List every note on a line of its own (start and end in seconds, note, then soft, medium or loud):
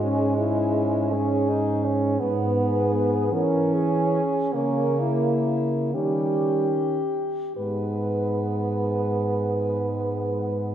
0.00 2.17 G#2 soft
0.00 1.15 G#3 soft
0.00 0.37 C#4 medium
0.05 2.22 C#4 soft
0.37 1.09 E4 medium
1.13 1.51 C#4 soft
1.13 2.19 G#4 medium
1.49 1.86 D#4 soft
1.84 2.20 C#4 soft
2.19 3.30 G#2 soft
2.19 3.31 B3 soft
2.19 3.34 B3 soft
2.59 3.36 G#4 soft
3.32 4.21 E3 soft
3.32 4.23 C#4 soft
3.32 4.55 C#4 medium
3.32 3.75 A#4 medium
3.74 4.54 G#4 medium
4.54 5.96 C#3 soft
4.54 5.57 A#3 soft
4.54 5.96 A#3 soft
4.54 5.01 C#4 soft
5.00 5.94 E4 soft
5.94 7.11 D#3 soft
5.94 6.70 G3 soft
5.94 7.11 C#4 soft
5.94 7.55 G4 soft
7.57 10.75 G#2 soft
7.57 10.75 G#3 soft
7.57 10.75 B3 soft
7.57 10.75 B4 soft